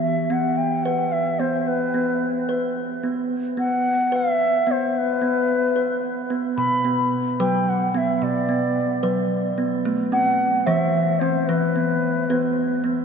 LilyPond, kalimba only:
\new Staff \with { instrumentName = "Kalimba" } { \time 6/8 \key b \phrygian \tempo 4. = 73 << { r8 b4 b'4 b8 | r8 b4 b'4 b8 | r8 b4 b'4 b8 | r8 b4 b'4 b8 |
r8 b4 b'4 b8 | r8 b4 b'4 b8 | r8 c'4 c''4 c'8 | r8 b4 b'4 b8 | } \\ { r2. | r2. | r2. | r2. |
b,4. fis4. | b,4. fis4. | a4. e4. | e4. b4. | } >> }